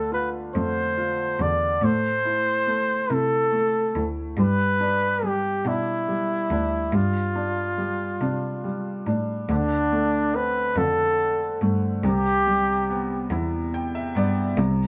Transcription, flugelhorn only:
0.14 0.30 B4 medium
0.55 1.43 C5 medium
1.42 1.86 D5 medium
1.84 3.14 C5 medium
3.13 4.08 A4 medium
4.40 5.28 B4 medium
5.26 5.69 G4 medium
5.68 6.97 E4 medium
6.95 9.07 F4 medium
9.52 10.37 D4 medium
10.35 10.79 B4 medium
10.77 11.62 A4 medium
12.05 13.28 G4 loud

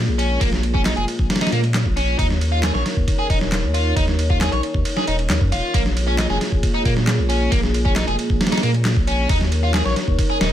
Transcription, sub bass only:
0.08 0.38 A#1 medium
0.41 0.94 A#1 medium
0.97 1.06 F1 medium
1.19 1.28 A#1 medium
1.52 1.87 A#2 loud
1.86 2.16 A#1 medium
2.19 2.72 D#2 loud
2.75 2.84 A#1 medium
2.97 3.06 D#2 medium
3.30 3.65 D#1 loud
3.63 3.94 D#2 medium
3.97 4.49 D#2 loud
4.52 4.61 A#1 medium
4.74 4.84 D#2 medium
5.08 5.29 D#1 loud
5.30 5.39 D#2 medium
5.41 5.54 F#2 loud
5.52 5.62 D#1 loud
5.74 6.27 A#1 medium
6.30 6.39 F1 medium
6.52 6.61 A#1 medium
6.85 7.20 A#2 loud
7.19 7.49 A#1 medium
7.52 8.05 A#1 loud
8.08 8.17 F1 medium
8.30 8.39 A#1 medium
8.63 8.98 A#2 loud
8.97 9.27 A#1 medium
9.29 9.82 D#2 loud
9.86 9.95 A#1 medium
10.08 10.17 D#2 medium
10.41 10.53 D#1 loud

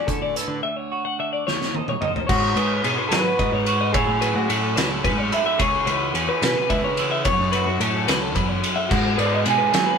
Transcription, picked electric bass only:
0.08 0.33 D3 medium
0.48 0.61 D3 medium
2.29 2.55 G#2 medium
2.56 2.82 G#2 loud
2.84 2.97 B2 medium
3.11 3.24 F#3 medium
3.40 3.52 G#2 medium
3.52 3.95 G#2 medium
3.95 4.07 A2 medium
4.07 4.33 A2 medium
4.35 4.48 A2 medium
4.50 4.75 A2 loud
4.77 5.06 C#2 medium
5.05 5.30 G#2 medium
5.60 5.85 C#2 medium
5.86 6.12 C#2 loud
6.14 6.27 E2 medium
6.42 6.55 B2 medium
6.70 6.83 C#2 loud
6.83 7.27 C#3 medium
7.26 7.38 F#2 loud
7.39 7.64 F#2 medium
7.66 7.79 F#2 medium
7.80 8.05 A2 medium
8.08 8.36 C#2 medium
8.36 8.61 F#2 medium
8.91 9.16 G#2 medium
9.18 9.43 G#2 medium
9.46 9.58 B2 medium
9.74 9.86 F#3 medium

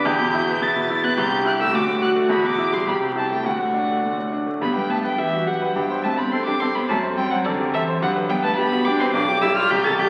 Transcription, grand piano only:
0.06 0.60 E2 loud
0.19 0.42 B2 medium
0.33 0.56 E4 medium
0.48 0.70 B3 medium
0.62 1.16 E2 medium
0.76 0.98 B2 medium
0.90 1.12 E4 medium
1.04 1.18 B3 medium
1.18 1.72 C2 loud
1.31 1.54 G2 medium
1.45 1.68 E4 medium
1.60 1.74 A3 medium
1.74 2.29 D2 loud
1.87 2.10 A2 medium
2.02 2.24 F#4 medium
2.16 2.30 A3 medium
2.29 2.85 E2 medium
2.44 2.67 B2 medium
2.58 2.81 E4 medium
2.73 2.87 G3 medium
2.87 3.43 C2 medium
3.01 3.24 C3 medium
3.16 3.39 E4 medium
3.30 3.45 A3 medium
3.44 4.02 D2 medium
3.59 3.83 A2 medium
3.74 3.97 D4 medium
3.89 4.12 A3 medium
4.04 4.60 D2 medium
4.18 4.41 A2 medium
4.32 4.56 D4 medium
4.47 4.62 A3 medium
4.61 5.72 G2 medium
4.75 4.99 B4 medium
4.90 5.13 B3 medium
5.04 5.27 B4 medium
5.18 5.42 G4 medium
5.33 5.47 F#4 medium
5.47 5.70 G4 medium
5.62 5.76 B4 medium
5.76 6.86 G2 medium
5.90 6.13 C5 medium
6.05 6.27 C4 medium
6.19 6.41 C5 medium
6.33 6.56 A4 medium
6.48 6.61 G4 medium
6.61 6.84 A4 medium
6.75 6.89 C5 medium
6.89 7.98 F#2 medium
7.03 7.26 C5 medium
7.17 7.40 C4 medium
7.31 7.54 C5 medium
7.46 7.68 A4 medium
7.60 7.74 G4 medium
7.74 7.97 A4 medium
7.88 8.02 C5 medium
8.02 9.11 G2 loud
8.16 8.38 B4 medium
8.30 8.53 B3 medium
8.44 8.66 B4 medium
8.58 8.81 G4 medium
8.72 8.86 F#4 medium
8.86 9.09 G4 medium
9.00 9.14 B4 medium
9.13 9.69 B1 loud
9.29 9.51 G4 medium
9.43 9.65 G3 medium
9.57 9.71 G4 medium
9.70 10.09 C2 loud
9.85 10.07 G4 medium
9.99 10.09 G3 medium

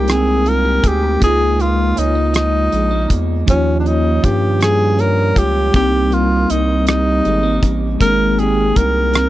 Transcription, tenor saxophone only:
0.00 0.12 G4 medium
0.11 0.50 G#4 medium
0.49 0.89 A#4 medium
0.87 1.23 G4 medium
1.23 1.62 G#4 medium
1.61 2.00 F4 medium
1.99 2.35 D#4 medium
2.35 3.16 D#4 medium
3.49 3.77 C#4 medium
3.80 3.88 D4 medium
3.87 4.26 D#4 medium
4.24 4.61 G4 medium
4.62 5.02 G#4 medium
5.01 5.40 A#4 medium
5.38 5.75 G4 medium
5.76 6.15 G4 medium
6.13 6.52 F4 medium
6.51 6.87 D#4 medium
6.88 7.69 D#4 medium
8.01 8.40 A#4 medium
8.39 8.78 G#4 medium
8.77 9.29 A#4 medium

